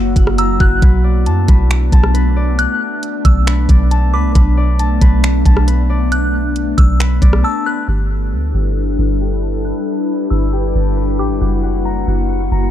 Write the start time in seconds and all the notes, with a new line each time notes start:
Already playing: F#1 F#3 A#3 E4 F#4 F#5
0.16 F#1 F#5, kick, closed hi-hat
0.27 cross-stick
0.38 A#5 E6, closed hi-hat
0.60 F#1 F#4 F#6, kick
0.82 B1 A3 B3 D4 B4, kick, closed hi-hat
1.04 D5
1.26 F#2 A5, closed hi-hat
1.48 B1 B4, kick, closed hi-hat
1.71 finger snap, closed hi-hat
1.92 B1 A5, kick, closed hi-hat
2.04 cross-stick
2.14 B4, closed hi-hat
2.36 D5
2.59 F#6, closed hi-hat
3.03 closed hi-hat
3.25 B1 E6, kick, closed hi-hat
3.47 B4, finger snap, closed hi-hat
3.69 B1 D5, kick, closed hi-hat
3.91 A5, closed hi-hat
4.13 C#2 B4 D6
4.24 B1
4.35 B1 B4, kick, closed hi-hat
4.57 D5
4.79 A5, closed hi-hat
5.01 B1 B4, kick, closed hi-hat
5.24 finger snap, closed hi-hat
5.45 B1 A5, kick, closed hi-hat
5.57 cross-stick
5.67 B4, closed hi-hat
5.90 D5
6.12 F#6, closed hi-hat
6.56 closed hi-hat
6.78 B1 E6, kick, closed hi-hat
7.00 B4, finger snap, closed hi-hat
7.22 B1 D5, kick, closed hi-hat
7.33 cross-stick
7.44 A5 E6
7.66 B4 F#6
7.88 G1 G3 D4 E4 G4 A4 B4
8.11 A4
8.32 D2 B4
8.54 G1 G4
8.99 G1 B4
9.21 G4
9.43 A4
9.65 G4 F#6
10.30 G1 E6
10.53 G4
10.75 G1 A4
10.97 B4
11.19 A1 G4 D6
11.30 G1
11.41 F#1 A#3 F#4
11.64 F#5
11.85 A#5
12.07 F#1 F#4
12.51 F#1 A#5